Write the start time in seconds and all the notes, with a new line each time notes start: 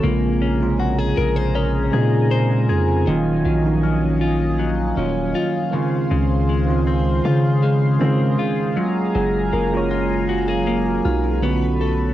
Already playing: A4
0.01 A#1 C#3 G#3 A#3 C4 G#4 A#4 G#5 A#5
0.06 F4
0.41 C#4
0.58 C3 G#3 A#3 C4
0.63 C#3 F4
0.79 F#4
0.98 G#4
1.17 A#1 A#4
1.36 C5
1.55 C#4 A#4
1.91 A#2 C#3 G#3 A#3 C4 G#4
1.95 D#4
2.31 C5
2.50 C#4 F4
2.69 F2 F4 G#4
2.88 C#4 F4
3.05 D#1 D#3 F#3 A#3 C#4 D#5 F5
3.09 F4
3.45 A#1 F#3
3.62 D#3 F3 A#3 C#4
3.66 F#3 D#4
3.83 C#4
4.21 F4
4.59 F#3
4.95 D#1 D#3 F#3 A#3 C#4
4.99 F4
5.35 F4
5.71 C#3 D#3 G#3 C4 C#4 G#4 C5 C6
5.75 F4
6.11 C#2 C#3
6.49 G#3
6.66 D#3 G#3 C4 C#4
6.70 F4
6.87 C4
7.25 C#3 F4
7.63 G#3
7.99 C#3 D#3 G#3 C4 C#4
8.03 F4
8.39 F4
8.75 F#3 G#3 A3 C#4 G#5 A#5
8.79 F4
8.84 A#3
9.15 F#1 F#3 G#4
9.53 F#1 A#3 A#4
9.70 F#3 G#3 A#3 C#4
9.74 F4 C#5
9.91 F4
10.29 F#4 C#5 F5
10.48 G#4 A#4 C#5
10.67 A#3 F#4 A#4
10.86 F4 G#4
11.05 B1 D#4 F4 F#4
11.24 C#4 F4
11.41 D3 A3 B3 C#4 A4 B4 C#5 B5
11.45 F#4
11.81 A4